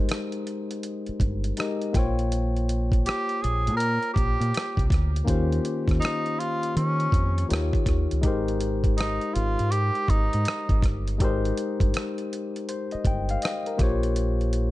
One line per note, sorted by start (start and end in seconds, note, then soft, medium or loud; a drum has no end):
0.00 1.52 G#3 medium
0.00 1.53 D#4 medium
0.00 1.54 G4 medium
0.00 1.55 A#4 medium
0.00 1.55 C5 medium
0.09 cross-stick loud
0.09 closed hi-hat medium
0.32 closed hi-hat soft
0.47 closed hi-hat soft
0.71 closed hi-hat soft
0.83 closed hi-hat medium
1.06 muted fingered electric bass stroke soft
1.06 closed hi-hat soft
1.20 1.51 G1 medium
1.20 kick medium
1.20 closed hi-hat medium
1.44 closed hi-hat soft
1.57 1.94 G#3 soft
1.57 1.95 D#4 soft
1.57 1.95 G4 soft
1.57 1.95 A#4 soft
1.57 1.96 D#5 medium
1.57 cross-stick medium
1.57 closed hi-hat medium
1.82 closed hi-hat soft
1.93 3.05 A#1 medium
1.93 4.86 A#3 medium
1.93 4.86 F4 medium
1.93 4.87 G5 medium
1.93 kick medium
1.93 closed hi-hat medium
1.97 4.88 C5 medium
1.97 4.89 C#5 medium
1.97 cross-stick soft
2.19 closed hi-hat soft
2.32 closed hi-hat medium
2.56 closed hi-hat soft
2.69 closed hi-hat medium
2.92 kick medium
2.92 closed hi-hat soft
3.06 3.43 G4 medium
3.06 cross-stick medium
3.06 closed hi-hat medium
3.29 closed hi-hat soft
3.42 3.69 A#1 medium
3.42 3.76 G#4 medium
3.42 closed hi-hat medium
3.67 3.97 A#2 medium
3.67 closed hi-hat soft
3.77 4.12 A#4 loud
3.77 closed hi-hat medium
4.03 closed hi-hat soft
4.13 4.36 A#1 medium
4.13 4.85 G4 medium
4.13 kick medium
4.13 closed hi-hat medium
4.40 4.51 A#2 medium
4.40 closed hi-hat soft
4.54 cross-stick medium
4.54 closed hi-hat medium
4.77 4.91 C2 medium
4.77 kick medium
4.77 closed hi-hat soft
4.90 5.21 D2 medium
4.90 kick medium
4.90 cross-stick soft
4.90 closed hi-hat medium
5.16 closed hi-hat soft
5.24 7.44 D#3 medium
5.24 7.44 A#3 medium
5.24 7.45 C#4 medium
5.24 7.46 F4 medium
5.24 kick medium
5.28 5.58 D#2 medium
5.28 7.46 G4 medium
5.28 7.47 C5 medium
5.28 closed hi-hat medium
5.52 closed hi-hat soft
5.65 closed hi-hat medium
5.88 5.99 D#2 medium
5.88 kick medium
5.88 cross-stick soft
5.88 closed hi-hat soft
6.00 6.41 D#4 medium
6.00 closed hi-hat medium
6.05 cross-stick loud
6.26 closed hi-hat soft
6.39 6.76 F4 medium
6.39 closed hi-hat medium
6.63 closed hi-hat soft
6.76 7.06 D#3 medium
6.76 7.46 C#4 medium
6.76 closed hi-hat medium
7.00 closed hi-hat soft
7.12 7.43 F2 medium
7.12 kick medium
7.12 closed hi-hat soft
7.38 closed hi-hat soft
7.48 7.70 D#2 medium
7.48 8.23 D#3 medium
7.48 8.22 D#4 soft
7.48 8.24 F4 soft
7.48 8.23 G4 soft
7.48 8.25 C#5 medium
7.48 closed hi-hat medium
7.53 cross-stick medium
7.73 kick medium
7.73 closed hi-hat soft
7.86 8.06 D#2 medium
7.86 kick medium
7.86 cross-stick soft
7.86 closed hi-hat medium
8.11 8.24 C#2 medium
8.11 closed hi-hat soft
8.21 9.18 G#1 medium
8.21 11.15 G#3 medium
8.21 11.16 D#4 medium
8.21 11.16 G4 medium
8.21 kick medium
8.21 closed hi-hat medium
8.26 11.17 A#4 medium
8.26 11.18 C5 medium
8.48 closed hi-hat soft
8.60 closed hi-hat medium
8.84 kick medium
8.84 closed hi-hat soft
8.97 9.36 D#4 medium
8.97 cross-stick medium
8.97 closed hi-hat medium
9.21 closed hi-hat soft
9.34 9.55 G#1 medium
9.34 9.73 F4 medium
9.34 closed hi-hat medium
9.59 9.90 G#2 medium
9.59 closed hi-hat soft
9.71 10.12 G4 loud
9.71 closed hi-hat medium
9.95 closed hi-hat soft
10.08 10.28 G#1 medium
10.08 10.84 D#4 medium
10.08 kick medium
10.08 closed hi-hat soft
10.33 10.45 G#2 medium
10.33 closed hi-hat soft
10.45 cross-stick medium
10.45 closed hi-hat medium
10.69 10.83 G#1 medium
10.69 kick medium
10.69 closed hi-hat soft
10.82 11.21 G1 medium
10.82 kick medium
10.82 cross-stick soft
10.82 closed hi-hat medium
11.08 closed hi-hat soft
11.18 11.51 G#1 medium
11.18 13.74 G#3 medium
11.18 13.75 D#4 medium
11.18 13.76 G4 medium
11.18 kick medium
11.18 closed hi-hat medium
11.22 12.66 A#4 medium
11.22 12.68 C5 medium
11.45 closed hi-hat soft
11.58 closed hi-hat medium
11.80 11.92 G1 medium
11.80 kick medium
11.80 closed hi-hat soft
11.94 cross-stick medium
11.94 closed hi-hat medium
12.18 closed hi-hat soft
12.33 closed hi-hat medium
12.56 closed hi-hat soft
12.69 12.91 C5 medium
12.69 closed hi-hat medium
12.91 13.05 D#5 medium
12.91 muted fingered electric bass stroke soft
12.91 closed hi-hat soft
13.05 13.36 G1 medium
13.05 13.29 G5 medium
13.05 kick medium
13.05 closed hi-hat medium
13.29 13.43 F5 medium
13.29 closed hi-hat soft
13.42 13.65 D#5 medium
13.42 cross-stick medium
13.42 closed hi-hat medium
13.66 14.02 A#4 medium
13.66 closed hi-hat soft
13.77 14.71 A#1 medium
13.77 14.71 A#3 medium
13.77 14.71 F4 medium
13.77 14.71 G4 medium
13.77 kick loud
13.77 closed hi-hat medium
13.81 14.71 C5 medium
13.81 14.71 C#5 medium
13.81 cross-stick soft
14.03 closed hi-hat soft
14.16 closed hi-hat medium
14.41 closed hi-hat soft
14.53 closed hi-hat medium